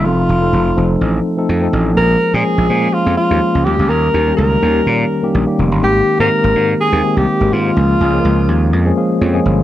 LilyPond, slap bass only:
\new Staff \with { instrumentName = "Slap bass" } { \clef bass \time 4/4 \key aes \major \tempo 4 = 124 f,,8 f,,8 f,,8 f,,8 a,,8 r8 f,8 a,,8 | bes,,8 r16 bes,16 r16 bes,,16 bes,8 r16 f,16 r16 ees,16 r16 des,16 ees,16 des,16 | ees,8 ees,8 des,8 ees,8 bes,8 r8 bes,,16 r16 f,,16 g,,16 | aes,,8 r16 aes,16 r16 aes,,16 aes,8 r16 ees,16 r16 c,16 r16 aes,,16 aes,8 |
des,8 des,8 des,8 ees,8 f,8 r8 f,8 g,,8 | }